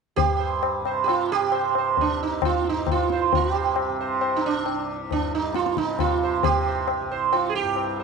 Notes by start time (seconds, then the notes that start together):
0.16 G2 G4, tabla tin, tabla ge
0.40 C5
0.63 tabla na
0.81 C3
0.85 C5, tabla na
1.04 G4, tabla na
1.09 F4
1.32 G4
1.42 C3
1.52 C5, tabla na
1.75 C5, tabla na
1.97 D4, tabla tin, tabla ge
2.05 C2
2.23 D#4
2.42 F4, tabla na, tabla ge
2.64 G2, tabla te
2.69 D#4
2.87 tabla na, tabla ge
2.91 F4
3.10 C5, tabla te
3.29 C3, tabla tin, tabla ge
3.35 F4
3.54 G4 C5
3.76 tabla na
3.89 C3
4.01 C5
4.21 C5, tabla na
4.36 D#4
4.46 D4
4.52 C2
4.66 tabla na
5.11 G2 D4, tabla tin, tabla ge
5.35 D#4
5.54 F4, tabla te
5.66 tabla te
5.77 C3 D#4, tabla ke
5.88 tabla te
5.99 F4, tabla na, tabla ge
6.23 C5
6.37 C3
6.43 G4, tabla tin, tabla ge
6.68 C5
6.88 tabla na
7.00 C2
7.11 C5
7.33 F4, tabla na
7.49 G#4
7.55 G4
7.62 G2
7.76 tabla na
8.00 C5